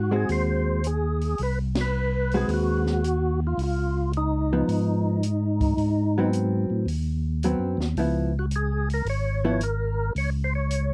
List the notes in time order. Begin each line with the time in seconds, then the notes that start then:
Already playing: G#2 F#4
0.11 G#3 C4 F#4
0.16 G#4
0.29 D#2 C5, open hi-hat
0.84 G#4, closed hi-hat
1.21 open hi-hat
1.38 C2, open hi-hat
1.43 B4
1.75 snare, ride
1.81 B4
2.31 G#3 C4 F#4 B4, open hi-hat
2.37 G#4
2.48 D#2, open hi-hat
2.54 F#4
2.86 snare
3.04 closed hi-hat
3.47 F4
3.58 C#2, open hi-hat
3.63 F4
4.13 D#4, closed hi-hat
4.53 F3 B3
4.68 G#2, open hi-hat
5.23 closed hi-hat
5.61 kick, open hi-hat
5.77 G#2, open hi-hat
6.18 F#3 B3 C4
6.33 closed hi-hat
6.70 A2
6.86 D#2, open hi-hat
7.43 F#3 B3 C4, closed hi-hat
7.59 F#2
7.77 D#2, snare
7.96 C#2 F3 B3 E4, open hi-hat
8.39 F#4
8.51 closed hi-hat
8.56 G#4
8.90 A#4, open hi-hat
9.05 G#1, open hi-hat
9.10 C#5
9.45 F3 B3 E4
9.61 A#4, closed hi-hat
10.15 C#2 C#5, open hi-hat
10.44 C5
10.55 C#5
10.71 closed hi-hat